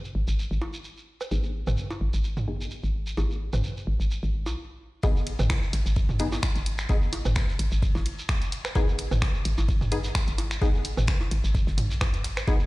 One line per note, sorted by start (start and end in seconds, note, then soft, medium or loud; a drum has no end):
0.04 shekere soft
0.15 0.25 G#1 medium
0.28 0.46 G#1 medium
0.28 shekere medium
0.39 shekere medium
0.51 0.59 G#1 loud
0.51 shekere soft
0.62 cowbell medium
0.73 shekere medium
0.84 shekere medium
0.97 shekere soft
1.21 low woodblock soft
1.21 shekere medium
1.31 1.63 G#1 medium
1.31 1.43 B3 medium
1.31 1.43 D#4 medium
1.31 1.43 G#4 medium
1.31 shekere medium
1.43 shekere soft
1.67 1.76 G#1 medium
1.67 mid tom medium
1.67 low woodblock medium
1.67 shekere medium
1.77 shekere medium
1.90 cowbell medium
1.90 shekere soft
2.01 2.11 G#1 medium
2.13 2.67 G#1 medium
2.13 shekere medium
2.24 shekere medium
2.37 mid tom medium
2.37 shekere soft
2.48 2.55 B3 medium
2.48 2.55 D#4 medium
2.48 2.55 G#4 medium
2.61 shekere medium
2.71 shekere medium
2.83 3.14 G#1 medium
2.83 shekere soft
3.06 shekere medium
3.17 3.49 G#1 medium
3.17 3.25 B3 medium
3.17 3.25 D#4 medium
3.17 3.25 G#4 medium
3.17 cowbell medium
3.17 shekere medium
3.30 shekere soft
3.53 3.62 G#1 medium
3.53 mid tom medium
3.53 low woodblock medium
3.53 shekere medium
3.64 shekere medium
3.77 shekere soft
3.87 3.97 G#1 loud
4.00 4.18 G#1 medium
4.00 shekere medium
4.11 shekere medium
4.23 4.48 G#1 loud
4.23 shekere soft
4.46 4.57 B1 medium
4.46 cowbell medium
4.46 shekere medium
5.03 5.35 G#1 loud
5.03 5.15 B3 medium
5.03 5.15 D#4 medium
5.03 5.15 G#4 medium
5.03 kick loud
5.03 ride medium
5.03 shekere medium
5.16 shekere soft
5.27 closed hi-hat medium
5.27 ride medium
5.39 5.48 G#1 medium
5.39 mid tom loud
5.39 low woodblock medium
5.39 shekere medium
5.50 finger snap loud
5.50 kick loud
5.50 snare loud
5.50 ride medium
5.50 cowbell medium
5.50 shekere medium
5.62 shekere soft
5.73 5.83 G#1 loud
5.73 snare medium
5.73 closed hi-hat medium
5.73 ride medium
5.86 6.39 G#1 medium
5.86 shekere medium
5.96 kick loud
5.96 ride medium
5.96 shekere medium
6.09 mid tom medium
6.09 shekere soft
6.19 6.27 B3 medium
6.19 6.27 D#4 medium
6.19 6.27 G#4 loud
6.19 closed hi-hat medium
6.19 ride medium
6.32 snare medium
6.32 cowbell medium
6.32 shekere medium
6.43 finger snap loud
6.43 kick loud
6.43 snare loud
6.43 closed hi-hat soft
6.43 ride medium
6.43 shekere medium
6.56 6.86 G#1 medium
6.56 closed hi-hat soft
6.56 shekere soft
6.66 closed hi-hat loud
6.66 ride medium
6.78 finger snap medium
6.78 shekere medium
6.89 7.21 G#1 loud
6.89 6.97 B3 medium
6.89 6.97 D#4 medium
6.89 6.97 G#4 medium
6.89 kick loud
6.89 ride medium
6.89 shekere medium
7.02 shekere soft
7.12 closed hi-hat loud
7.12 ride medium
7.12 cowbell medium
7.25 7.34 G#1 medium
7.25 mid tom medium
7.25 low woodblock medium
7.25 shekere medium
7.35 finger snap loud
7.35 kick loud
7.35 snare loud
7.35 ride medium
7.35 shekere medium
7.48 snare medium
7.48 shekere soft
7.59 7.69 G#1 loud
7.59 closed hi-hat medium
7.59 ride medium
7.72 7.90 G#1 medium
7.72 shekere medium
7.83 kick loud
7.83 ride medium
7.83 shekere medium
7.95 8.03 G#1 loud
7.95 snare soft
7.95 cowbell medium
7.95 shekere soft
8.06 closed hi-hat medium
8.06 ride medium
8.19 shekere medium
8.29 finger snap loud
8.29 kick loud
8.29 snare loud
8.29 closed hi-hat soft
8.29 ride medium
8.29 shekere medium
8.42 closed hi-hat soft
8.42 shekere soft
8.52 closed hi-hat medium
8.52 ride medium
8.65 finger snap medium
8.65 low woodblock medium
8.65 shekere medium
8.75 9.07 G#1 loud
8.75 8.87 B3 medium
8.75 8.87 D#4 medium
8.75 8.87 G#4 medium
8.75 kick loud
8.75 ride medium
8.75 cowbell medium
8.75 shekere medium
8.88 shekere soft
8.98 closed hi-hat loud
8.98 ride medium
9.11 9.20 G#1 medium
9.11 mid tom medium
9.11 low woodblock medium
9.11 shekere medium
9.22 finger snap medium
9.22 kick loud
9.22 snare loud
9.22 ride medium
9.22 shekere medium
9.34 shekere soft
9.45 9.55 G#1 loud
9.45 closed hi-hat loud
9.45 ride medium
9.58 10.11 G#1 medium
9.58 cowbell medium
9.58 shekere medium
9.69 kick loud
9.69 ride medium
9.69 shekere medium
9.81 mid tom medium
9.81 shekere soft
9.92 9.99 B3 medium
9.92 9.99 D#4 medium
9.92 9.99 G#4 loud
9.92 closed hi-hat loud
9.92 ride medium
10.04 snare soft
10.04 shekere medium
10.15 finger snap loud
10.15 kick loud
10.15 snare loud
10.15 closed hi-hat soft
10.15 ride medium
10.15 shekere medium
10.28 10.58 G#1 medium
10.28 closed hi-hat soft
10.28 shekere soft
10.38 closed hi-hat medium
10.38 ride medium
10.38 cowbell medium
10.51 finger snap medium
10.51 shekere medium
10.61 10.93 G#1 medium
10.61 10.69 B3 medium
10.61 10.69 D#4 medium
10.61 10.69 G#4 medium
10.61 kick loud
10.61 ride medium
10.61 shekere medium
10.75 shekere soft
10.85 closed hi-hat loud
10.85 ride medium
10.97 11.06 G#1 medium
10.97 mid tom medium
10.97 low woodblock medium
10.97 shekere medium
11.07 finger snap medium
11.07 kick loud
11.07 snare loud
11.07 ride medium
11.07 shekere medium
11.20 snare soft
11.20 cowbell medium
11.20 shekere soft
11.31 11.41 G#1 loud
11.31 closed hi-hat medium
11.31 ride medium
11.44 11.62 G#1 medium
11.44 shekere medium
11.55 kick loud
11.55 ride medium
11.55 shekere medium
11.67 11.92 G#1 loud
11.67 snare soft
11.67 shekere soft
11.78 closed hi-hat loud
11.78 mid tom medium
11.78 ride medium
11.90 12.15 B1 medium
11.90 snare soft
11.90 shekere medium
12.01 finger snap loud
12.01 kick loud
12.01 closed hi-hat soft
12.01 ride medium
12.01 cowbell medium
12.01 low woodblock medium
12.01 shekere medium
12.14 12.26 G#2 medium
12.14 closed hi-hat soft
12.14 shekere soft
12.24 12.43 G#1 medium
12.24 snare loud
12.24 closed hi-hat medium
12.24 ride medium
12.37 finger snap medium
12.37 low woodblock medium
12.37 shekere medium
12.47 12.66 G#1 loud
12.47 12.59 B3 medium
12.47 12.59 D#4 medium
12.47 12.59 G#4 medium
12.47 kick loud
12.47 ride medium
12.47 shekere medium
12.59 shekere soft